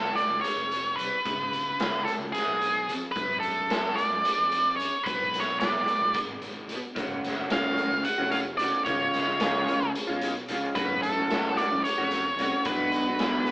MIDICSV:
0, 0, Header, 1, 6, 480
1, 0, Start_track
1, 0, Key_signature, 3, "minor"
1, 0, Tempo, 542986
1, 1104, Time_signature, 7, 3, 24, 8
1, 11946, End_track
2, 0, Start_track
2, 0, Title_t, "Lead electric guitar"
2, 0, Program_c, 0, 29
2, 0, Note_on_c, 0, 69, 71
2, 137, Note_on_c, 0, 74, 93
2, 152, Note_off_c, 0, 69, 0
2, 359, Note_off_c, 0, 74, 0
2, 363, Note_on_c, 0, 73, 94
2, 846, Note_on_c, 0, 71, 83
2, 869, Note_off_c, 0, 73, 0
2, 1806, Note_off_c, 0, 71, 0
2, 1810, Note_on_c, 0, 69, 82
2, 1877, Note_off_c, 0, 69, 0
2, 2055, Note_on_c, 0, 68, 87
2, 2567, Note_off_c, 0, 68, 0
2, 2754, Note_on_c, 0, 71, 84
2, 3001, Note_off_c, 0, 71, 0
2, 3005, Note_on_c, 0, 69, 73
2, 3496, Note_on_c, 0, 74, 92
2, 3513, Note_off_c, 0, 69, 0
2, 4208, Note_off_c, 0, 74, 0
2, 4211, Note_on_c, 0, 73, 79
2, 4451, Note_on_c, 0, 71, 80
2, 4469, Note_off_c, 0, 73, 0
2, 4758, Note_off_c, 0, 71, 0
2, 4774, Note_on_c, 0, 73, 78
2, 4946, Note_off_c, 0, 73, 0
2, 4950, Note_on_c, 0, 74, 72
2, 5456, Note_off_c, 0, 74, 0
2, 6649, Note_on_c, 0, 77, 85
2, 7112, Note_off_c, 0, 77, 0
2, 7116, Note_on_c, 0, 78, 90
2, 7347, Note_off_c, 0, 78, 0
2, 7351, Note_on_c, 0, 77, 82
2, 7416, Note_off_c, 0, 77, 0
2, 7579, Note_on_c, 0, 74, 75
2, 7810, Note_off_c, 0, 74, 0
2, 7820, Note_on_c, 0, 73, 82
2, 8752, Note_off_c, 0, 73, 0
2, 9506, Note_on_c, 0, 71, 87
2, 9742, Note_off_c, 0, 71, 0
2, 9745, Note_on_c, 0, 69, 85
2, 10229, Note_on_c, 0, 74, 97
2, 10243, Note_off_c, 0, 69, 0
2, 10463, Note_off_c, 0, 74, 0
2, 10466, Note_on_c, 0, 73, 94
2, 11190, Note_on_c, 0, 71, 78
2, 11208, Note_off_c, 0, 73, 0
2, 11946, Note_off_c, 0, 71, 0
2, 11946, End_track
3, 0, Start_track
3, 0, Title_t, "Clean electric guitar"
3, 0, Program_c, 1, 27
3, 6143, Note_on_c, 1, 42, 79
3, 6151, Note_on_c, 1, 49, 88
3, 6154, Note_on_c, 1, 54, 82
3, 6161, Note_on_c, 1, 57, 84
3, 6164, Note_on_c, 1, 61, 89
3, 6171, Note_on_c, 1, 66, 95
3, 6500, Note_off_c, 1, 66, 0
3, 6511, Note_on_c, 1, 66, 62
3, 6516, Note_off_c, 1, 61, 0
3, 6517, Note_off_c, 1, 57, 0
3, 6519, Note_on_c, 1, 61, 58
3, 6525, Note_off_c, 1, 54, 0
3, 6528, Note_on_c, 1, 57, 60
3, 6536, Note_on_c, 1, 54, 49
3, 6621, Note_off_c, 1, 42, 0
3, 6630, Note_off_c, 1, 49, 0
3, 6631, Note_off_c, 1, 54, 0
3, 6632, Note_on_c, 1, 42, 80
3, 6636, Note_off_c, 1, 57, 0
3, 6641, Note_on_c, 1, 49, 84
3, 6642, Note_on_c, 1, 54, 88
3, 6644, Note_off_c, 1, 66, 0
3, 6646, Note_on_c, 1, 57, 90
3, 6647, Note_off_c, 1, 61, 0
3, 6650, Note_on_c, 1, 61, 91
3, 6655, Note_on_c, 1, 66, 81
3, 6867, Note_off_c, 1, 54, 0
3, 6878, Note_on_c, 1, 54, 67
3, 6881, Note_off_c, 1, 57, 0
3, 6891, Note_off_c, 1, 61, 0
3, 6892, Note_off_c, 1, 66, 0
3, 6892, Note_on_c, 1, 57, 69
3, 6895, Note_on_c, 1, 61, 71
3, 6903, Note_on_c, 1, 66, 72
3, 6993, Note_off_c, 1, 66, 0
3, 6999, Note_off_c, 1, 57, 0
3, 7001, Note_off_c, 1, 54, 0
3, 7001, Note_off_c, 1, 61, 0
3, 7113, Note_off_c, 1, 42, 0
3, 7118, Note_off_c, 1, 49, 0
3, 7231, Note_on_c, 1, 66, 57
3, 7240, Note_on_c, 1, 61, 67
3, 7248, Note_on_c, 1, 57, 65
3, 7254, Note_on_c, 1, 54, 54
3, 7328, Note_off_c, 1, 54, 0
3, 7339, Note_on_c, 1, 54, 58
3, 7341, Note_off_c, 1, 57, 0
3, 7352, Note_on_c, 1, 57, 58
3, 7358, Note_off_c, 1, 61, 0
3, 7358, Note_off_c, 1, 66, 0
3, 7362, Note_on_c, 1, 61, 68
3, 7368, Note_on_c, 1, 66, 63
3, 7466, Note_off_c, 1, 66, 0
3, 7473, Note_off_c, 1, 57, 0
3, 7475, Note_off_c, 1, 61, 0
3, 7478, Note_off_c, 1, 54, 0
3, 7595, Note_on_c, 1, 42, 76
3, 7603, Note_on_c, 1, 49, 86
3, 7610, Note_on_c, 1, 54, 82
3, 7616, Note_on_c, 1, 57, 89
3, 7618, Note_on_c, 1, 61, 94
3, 7624, Note_on_c, 1, 66, 92
3, 7818, Note_off_c, 1, 49, 0
3, 7821, Note_off_c, 1, 42, 0
3, 7828, Note_off_c, 1, 54, 0
3, 7828, Note_on_c, 1, 49, 88
3, 7831, Note_off_c, 1, 57, 0
3, 7835, Note_off_c, 1, 66, 0
3, 7838, Note_on_c, 1, 53, 91
3, 7845, Note_on_c, 1, 56, 77
3, 7846, Note_off_c, 1, 61, 0
3, 7849, Note_on_c, 1, 61, 96
3, 7856, Note_on_c, 1, 65, 102
3, 8179, Note_off_c, 1, 65, 0
3, 8190, Note_on_c, 1, 65, 59
3, 8201, Note_off_c, 1, 61, 0
3, 8205, Note_off_c, 1, 56, 0
3, 8205, Note_on_c, 1, 61, 57
3, 8216, Note_on_c, 1, 56, 57
3, 8298, Note_off_c, 1, 49, 0
3, 8304, Note_off_c, 1, 53, 0
3, 8309, Note_on_c, 1, 49, 82
3, 8313, Note_off_c, 1, 56, 0
3, 8315, Note_on_c, 1, 53, 86
3, 8324, Note_off_c, 1, 65, 0
3, 8324, Note_on_c, 1, 56, 94
3, 8326, Note_off_c, 1, 61, 0
3, 8329, Note_on_c, 1, 61, 98
3, 8334, Note_on_c, 1, 65, 88
3, 8542, Note_off_c, 1, 53, 0
3, 8552, Note_off_c, 1, 56, 0
3, 8553, Note_on_c, 1, 53, 65
3, 8559, Note_off_c, 1, 61, 0
3, 8562, Note_on_c, 1, 56, 62
3, 8570, Note_on_c, 1, 61, 73
3, 8571, Note_off_c, 1, 65, 0
3, 8582, Note_on_c, 1, 65, 68
3, 8664, Note_off_c, 1, 65, 0
3, 8666, Note_off_c, 1, 61, 0
3, 8668, Note_off_c, 1, 53, 0
3, 8668, Note_off_c, 1, 56, 0
3, 8791, Note_off_c, 1, 49, 0
3, 8905, Note_on_c, 1, 65, 70
3, 8917, Note_on_c, 1, 61, 56
3, 8930, Note_on_c, 1, 56, 56
3, 9027, Note_off_c, 1, 56, 0
3, 9027, Note_on_c, 1, 53, 68
3, 9035, Note_off_c, 1, 61, 0
3, 9037, Note_on_c, 1, 56, 70
3, 9041, Note_off_c, 1, 65, 0
3, 9045, Note_on_c, 1, 61, 64
3, 9052, Note_on_c, 1, 65, 66
3, 9142, Note_off_c, 1, 65, 0
3, 9147, Note_off_c, 1, 61, 0
3, 9150, Note_off_c, 1, 53, 0
3, 9150, Note_off_c, 1, 56, 0
3, 9271, Note_on_c, 1, 49, 84
3, 9277, Note_on_c, 1, 53, 84
3, 9284, Note_on_c, 1, 56, 91
3, 9291, Note_on_c, 1, 61, 86
3, 9294, Note_on_c, 1, 65, 99
3, 9498, Note_off_c, 1, 49, 0
3, 9501, Note_off_c, 1, 53, 0
3, 9502, Note_on_c, 1, 42, 90
3, 9504, Note_off_c, 1, 56, 0
3, 9508, Note_off_c, 1, 61, 0
3, 9509, Note_off_c, 1, 65, 0
3, 9511, Note_on_c, 1, 49, 86
3, 9517, Note_on_c, 1, 54, 89
3, 9521, Note_on_c, 1, 57, 96
3, 9524, Note_on_c, 1, 61, 93
3, 9530, Note_on_c, 1, 66, 96
3, 9864, Note_off_c, 1, 66, 0
3, 9867, Note_off_c, 1, 61, 0
3, 9868, Note_on_c, 1, 66, 65
3, 9876, Note_off_c, 1, 57, 0
3, 9878, Note_on_c, 1, 61, 55
3, 9886, Note_on_c, 1, 57, 49
3, 9889, Note_off_c, 1, 54, 0
3, 9893, Note_on_c, 1, 54, 54
3, 9973, Note_off_c, 1, 42, 0
3, 9984, Note_on_c, 1, 42, 77
3, 9985, Note_off_c, 1, 49, 0
3, 9993, Note_off_c, 1, 54, 0
3, 9996, Note_off_c, 1, 57, 0
3, 9996, Note_on_c, 1, 49, 98
3, 9996, Note_on_c, 1, 54, 91
3, 9997, Note_off_c, 1, 61, 0
3, 10007, Note_on_c, 1, 57, 90
3, 10007, Note_on_c, 1, 61, 97
3, 10010, Note_off_c, 1, 66, 0
3, 10014, Note_on_c, 1, 66, 97
3, 10226, Note_off_c, 1, 54, 0
3, 10230, Note_off_c, 1, 57, 0
3, 10230, Note_on_c, 1, 54, 54
3, 10240, Note_off_c, 1, 61, 0
3, 10241, Note_on_c, 1, 57, 68
3, 10250, Note_on_c, 1, 61, 77
3, 10255, Note_off_c, 1, 66, 0
3, 10259, Note_on_c, 1, 66, 67
3, 10344, Note_off_c, 1, 57, 0
3, 10344, Note_off_c, 1, 61, 0
3, 10347, Note_off_c, 1, 66, 0
3, 10352, Note_off_c, 1, 54, 0
3, 10467, Note_off_c, 1, 42, 0
3, 10473, Note_off_c, 1, 49, 0
3, 10590, Note_on_c, 1, 66, 64
3, 10600, Note_on_c, 1, 61, 62
3, 10608, Note_on_c, 1, 57, 60
3, 10615, Note_on_c, 1, 54, 49
3, 10710, Note_off_c, 1, 54, 0
3, 10710, Note_off_c, 1, 57, 0
3, 10714, Note_on_c, 1, 54, 63
3, 10716, Note_off_c, 1, 61, 0
3, 10720, Note_on_c, 1, 57, 65
3, 10726, Note_on_c, 1, 61, 67
3, 10730, Note_off_c, 1, 66, 0
3, 10733, Note_on_c, 1, 66, 64
3, 10838, Note_off_c, 1, 57, 0
3, 10839, Note_off_c, 1, 61, 0
3, 10841, Note_off_c, 1, 66, 0
3, 10849, Note_off_c, 1, 54, 0
3, 10950, Note_on_c, 1, 42, 74
3, 10958, Note_on_c, 1, 49, 80
3, 10962, Note_on_c, 1, 54, 87
3, 10969, Note_on_c, 1, 57, 89
3, 10971, Note_on_c, 1, 61, 75
3, 10977, Note_on_c, 1, 66, 101
3, 11175, Note_off_c, 1, 42, 0
3, 11179, Note_off_c, 1, 49, 0
3, 11184, Note_off_c, 1, 57, 0
3, 11185, Note_off_c, 1, 61, 0
3, 11191, Note_on_c, 1, 47, 81
3, 11197, Note_off_c, 1, 54, 0
3, 11201, Note_on_c, 1, 54, 95
3, 11208, Note_on_c, 1, 59, 80
3, 11215, Note_off_c, 1, 66, 0
3, 11216, Note_on_c, 1, 62, 92
3, 11218, Note_on_c, 1, 66, 109
3, 11541, Note_off_c, 1, 66, 0
3, 11552, Note_on_c, 1, 66, 60
3, 11554, Note_off_c, 1, 62, 0
3, 11564, Note_on_c, 1, 62, 56
3, 11569, Note_off_c, 1, 59, 0
3, 11580, Note_on_c, 1, 59, 44
3, 11654, Note_off_c, 1, 47, 0
3, 11661, Note_off_c, 1, 54, 0
3, 11665, Note_on_c, 1, 47, 83
3, 11668, Note_off_c, 1, 59, 0
3, 11671, Note_on_c, 1, 54, 90
3, 11675, Note_off_c, 1, 62, 0
3, 11678, Note_off_c, 1, 66, 0
3, 11679, Note_on_c, 1, 59, 90
3, 11685, Note_on_c, 1, 62, 93
3, 11689, Note_on_c, 1, 66, 100
3, 11898, Note_off_c, 1, 54, 0
3, 11909, Note_off_c, 1, 59, 0
3, 11909, Note_on_c, 1, 54, 65
3, 11919, Note_off_c, 1, 62, 0
3, 11919, Note_on_c, 1, 59, 62
3, 11925, Note_off_c, 1, 66, 0
3, 11946, Note_off_c, 1, 47, 0
3, 11946, Note_off_c, 1, 54, 0
3, 11946, Note_off_c, 1, 59, 0
3, 11946, End_track
4, 0, Start_track
4, 0, Title_t, "Fingered electric bass"
4, 0, Program_c, 2, 33
4, 0, Note_on_c, 2, 30, 67
4, 128, Note_off_c, 2, 30, 0
4, 254, Note_on_c, 2, 30, 78
4, 359, Note_off_c, 2, 30, 0
4, 492, Note_on_c, 2, 29, 70
4, 853, Note_on_c, 2, 36, 76
4, 866, Note_off_c, 2, 29, 0
4, 959, Note_off_c, 2, 36, 0
4, 1104, Note_on_c, 2, 37, 81
4, 1811, Note_off_c, 2, 37, 0
4, 1929, Note_on_c, 2, 37, 84
4, 2037, Note_off_c, 2, 37, 0
4, 2178, Note_on_c, 2, 35, 67
4, 2542, Note_on_c, 2, 41, 78
4, 2555, Note_off_c, 2, 35, 0
4, 2646, Note_off_c, 2, 41, 0
4, 2793, Note_on_c, 2, 42, 72
4, 3498, Note_off_c, 2, 42, 0
4, 3633, Note_on_c, 2, 42, 87
4, 3733, Note_off_c, 2, 42, 0
4, 3866, Note_on_c, 2, 41, 76
4, 4231, Note_off_c, 2, 41, 0
4, 4231, Note_on_c, 2, 42, 83
4, 4332, Note_off_c, 2, 42, 0
4, 4473, Note_on_c, 2, 35, 82
4, 5178, Note_off_c, 2, 35, 0
4, 5305, Note_on_c, 2, 35, 86
4, 5409, Note_off_c, 2, 35, 0
4, 5544, Note_on_c, 2, 32, 69
4, 5910, Note_on_c, 2, 47, 74
4, 5923, Note_off_c, 2, 32, 0
4, 6012, Note_off_c, 2, 47, 0
4, 6156, Note_on_c, 2, 30, 68
4, 6861, Note_off_c, 2, 30, 0
4, 6988, Note_on_c, 2, 30, 86
4, 7091, Note_off_c, 2, 30, 0
4, 7231, Note_on_c, 2, 29, 70
4, 7599, Note_off_c, 2, 29, 0
4, 7599, Note_on_c, 2, 35, 81
4, 7698, Note_off_c, 2, 35, 0
4, 7830, Note_on_c, 2, 37, 77
4, 8537, Note_off_c, 2, 37, 0
4, 8675, Note_on_c, 2, 37, 90
4, 8775, Note_off_c, 2, 37, 0
4, 8915, Note_on_c, 2, 35, 72
4, 9277, Note_on_c, 2, 49, 84
4, 9291, Note_off_c, 2, 35, 0
4, 9376, Note_off_c, 2, 49, 0
4, 9506, Note_on_c, 2, 42, 80
4, 10212, Note_off_c, 2, 42, 0
4, 10359, Note_on_c, 2, 42, 93
4, 10457, Note_off_c, 2, 42, 0
4, 10587, Note_on_c, 2, 41, 78
4, 10944, Note_off_c, 2, 41, 0
4, 10944, Note_on_c, 2, 36, 83
4, 11047, Note_off_c, 2, 36, 0
4, 11186, Note_on_c, 2, 35, 87
4, 11889, Note_off_c, 2, 35, 0
4, 11946, End_track
5, 0, Start_track
5, 0, Title_t, "Muted clean electric guitar strokes"
5, 7003, Note_on_c, 9, 29, 48
5, 7092, Note_off_c, 9, 29, 0
5, 7476, Note_on_c, 9, 29, 46
5, 7565, Note_off_c, 9, 29, 0
5, 8675, Note_on_c, 9, 29, 50
5, 8763, Note_off_c, 9, 29, 0
5, 9152, Note_on_c, 9, 29, 50
5, 9241, Note_off_c, 9, 29, 0
5, 10351, Note_on_c, 9, 29, 41
5, 10439, Note_off_c, 9, 29, 0
5, 10844, Note_on_c, 9, 29, 46
5, 10933, Note_off_c, 9, 29, 0
5, 11946, End_track
6, 0, Start_track
6, 0, Title_t, "Drums"
6, 154, Note_on_c, 9, 42, 54
6, 242, Note_off_c, 9, 42, 0
6, 391, Note_on_c, 9, 42, 71
6, 479, Note_off_c, 9, 42, 0
6, 631, Note_on_c, 9, 42, 54
6, 720, Note_off_c, 9, 42, 0
6, 875, Note_on_c, 9, 42, 54
6, 963, Note_off_c, 9, 42, 0
6, 1110, Note_on_c, 9, 36, 94
6, 1110, Note_on_c, 9, 42, 75
6, 1198, Note_off_c, 9, 42, 0
6, 1199, Note_off_c, 9, 36, 0
6, 1352, Note_on_c, 9, 42, 54
6, 1440, Note_off_c, 9, 42, 0
6, 1588, Note_on_c, 9, 42, 76
6, 1596, Note_on_c, 9, 38, 97
6, 1677, Note_off_c, 9, 42, 0
6, 1685, Note_off_c, 9, 38, 0
6, 1835, Note_on_c, 9, 42, 52
6, 1923, Note_off_c, 9, 42, 0
6, 2073, Note_on_c, 9, 42, 72
6, 2081, Note_on_c, 9, 38, 28
6, 2161, Note_off_c, 9, 42, 0
6, 2169, Note_off_c, 9, 38, 0
6, 2312, Note_on_c, 9, 42, 48
6, 2400, Note_off_c, 9, 42, 0
6, 2554, Note_on_c, 9, 42, 51
6, 2643, Note_off_c, 9, 42, 0
6, 2791, Note_on_c, 9, 42, 62
6, 2792, Note_on_c, 9, 36, 98
6, 2880, Note_off_c, 9, 36, 0
6, 2880, Note_off_c, 9, 42, 0
6, 3031, Note_on_c, 9, 42, 57
6, 3119, Note_off_c, 9, 42, 0
6, 3272, Note_on_c, 9, 42, 70
6, 3280, Note_on_c, 9, 38, 108
6, 3361, Note_off_c, 9, 42, 0
6, 3368, Note_off_c, 9, 38, 0
6, 3520, Note_on_c, 9, 42, 54
6, 3608, Note_off_c, 9, 42, 0
6, 3757, Note_on_c, 9, 42, 67
6, 3845, Note_off_c, 9, 42, 0
6, 3993, Note_on_c, 9, 42, 59
6, 4081, Note_off_c, 9, 42, 0
6, 4241, Note_on_c, 9, 42, 57
6, 4329, Note_off_c, 9, 42, 0
6, 4475, Note_on_c, 9, 36, 93
6, 4477, Note_on_c, 9, 42, 82
6, 4563, Note_off_c, 9, 36, 0
6, 4565, Note_off_c, 9, 42, 0
6, 4719, Note_on_c, 9, 42, 63
6, 4727, Note_on_c, 9, 38, 36
6, 4807, Note_off_c, 9, 42, 0
6, 4815, Note_off_c, 9, 38, 0
6, 4956, Note_on_c, 9, 42, 81
6, 4964, Note_on_c, 9, 38, 96
6, 5044, Note_off_c, 9, 42, 0
6, 5052, Note_off_c, 9, 38, 0
6, 5195, Note_on_c, 9, 42, 59
6, 5283, Note_off_c, 9, 42, 0
6, 5430, Note_on_c, 9, 42, 77
6, 5434, Note_on_c, 9, 36, 88
6, 5519, Note_off_c, 9, 42, 0
6, 5523, Note_off_c, 9, 36, 0
6, 5673, Note_on_c, 9, 42, 51
6, 5762, Note_off_c, 9, 42, 0
6, 5914, Note_on_c, 9, 42, 56
6, 6002, Note_off_c, 9, 42, 0
6, 6153, Note_on_c, 9, 42, 69
6, 6155, Note_on_c, 9, 36, 98
6, 6242, Note_off_c, 9, 42, 0
6, 6244, Note_off_c, 9, 36, 0
6, 6403, Note_on_c, 9, 42, 55
6, 6411, Note_on_c, 9, 38, 34
6, 6491, Note_off_c, 9, 42, 0
6, 6499, Note_off_c, 9, 38, 0
6, 6632, Note_on_c, 9, 42, 73
6, 6640, Note_on_c, 9, 38, 107
6, 6721, Note_off_c, 9, 42, 0
6, 6729, Note_off_c, 9, 38, 0
6, 6876, Note_on_c, 9, 42, 55
6, 6964, Note_off_c, 9, 42, 0
6, 7112, Note_on_c, 9, 42, 66
6, 7201, Note_off_c, 9, 42, 0
6, 7348, Note_on_c, 9, 42, 51
6, 7436, Note_off_c, 9, 42, 0
6, 7593, Note_on_c, 9, 42, 53
6, 7682, Note_off_c, 9, 42, 0
6, 7831, Note_on_c, 9, 42, 65
6, 7834, Note_on_c, 9, 36, 97
6, 7919, Note_off_c, 9, 42, 0
6, 7923, Note_off_c, 9, 36, 0
6, 8076, Note_on_c, 9, 42, 54
6, 8084, Note_on_c, 9, 38, 32
6, 8165, Note_off_c, 9, 42, 0
6, 8173, Note_off_c, 9, 38, 0
6, 8309, Note_on_c, 9, 42, 82
6, 8317, Note_on_c, 9, 38, 104
6, 8397, Note_off_c, 9, 42, 0
6, 8405, Note_off_c, 9, 38, 0
6, 8558, Note_on_c, 9, 42, 56
6, 8647, Note_off_c, 9, 42, 0
6, 8799, Note_on_c, 9, 42, 76
6, 8887, Note_off_c, 9, 42, 0
6, 9029, Note_on_c, 9, 42, 62
6, 9117, Note_off_c, 9, 42, 0
6, 9268, Note_on_c, 9, 42, 61
6, 9357, Note_off_c, 9, 42, 0
6, 9505, Note_on_c, 9, 42, 82
6, 9513, Note_on_c, 9, 36, 106
6, 9594, Note_off_c, 9, 42, 0
6, 9601, Note_off_c, 9, 36, 0
6, 9752, Note_on_c, 9, 42, 58
6, 9840, Note_off_c, 9, 42, 0
6, 9993, Note_on_c, 9, 42, 70
6, 10001, Note_on_c, 9, 38, 101
6, 10082, Note_off_c, 9, 42, 0
6, 10090, Note_off_c, 9, 38, 0
6, 10235, Note_on_c, 9, 42, 59
6, 10324, Note_off_c, 9, 42, 0
6, 10477, Note_on_c, 9, 42, 67
6, 10565, Note_off_c, 9, 42, 0
6, 10705, Note_on_c, 9, 42, 51
6, 10794, Note_off_c, 9, 42, 0
6, 10950, Note_on_c, 9, 42, 54
6, 11038, Note_off_c, 9, 42, 0
6, 11181, Note_on_c, 9, 42, 72
6, 11187, Note_on_c, 9, 36, 97
6, 11270, Note_off_c, 9, 42, 0
6, 11276, Note_off_c, 9, 36, 0
6, 11421, Note_on_c, 9, 42, 57
6, 11510, Note_off_c, 9, 42, 0
6, 11660, Note_on_c, 9, 42, 71
6, 11668, Note_on_c, 9, 38, 94
6, 11748, Note_off_c, 9, 42, 0
6, 11756, Note_off_c, 9, 38, 0
6, 11906, Note_on_c, 9, 42, 53
6, 11946, Note_off_c, 9, 42, 0
6, 11946, End_track
0, 0, End_of_file